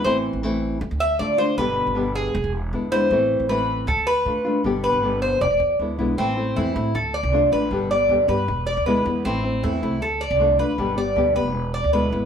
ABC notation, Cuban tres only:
X:1
M:4/4
L:1/8
Q:1/4=156
K:Am
V:1 name="Cuban tres"
c z4 e d c | B3 ^G2 z2 c- | c2 B2 A B3 | z B2 c d2 z2 |
C2 E2 A d2 B- | B d2 B2 d B2 | C2 E2 A d2 B- | B d2 B2 d B2 |]